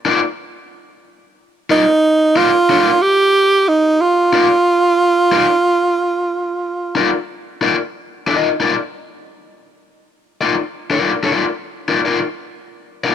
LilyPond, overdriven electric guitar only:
\new Staff \with { instrumentName = "Overdriven electric guitar" } { \time 4/4 \key ees \major \tempo 4 = 91 <ees' f' bes' d''>16 r2 r16 <ees' f' bes' d''>16 r8. <ees' f' bes' d''>16 r16 | <ees' f' bes' d''>16 r2 r16 <ees' f' bes' d''>16 r4 r16 | <ees' f' bes' d''>16 r2 r16 <ees' f' bes' d''>16 r8. <ees' f' bes' d''>16 r16 | r8 <ees' f' bes' ees''>16 r16 <ees' f' bes' d''>16 r2 r8 <ees' f' bes' d''>16 |
r8 <ees' f' bes' d''>16 r16 <ees' f' bes' d''>16 r8. <ees' f' bes' d''>16 <ees' f' bes' d''>16 r4 r16 <ees' f' bes' d''>16 | }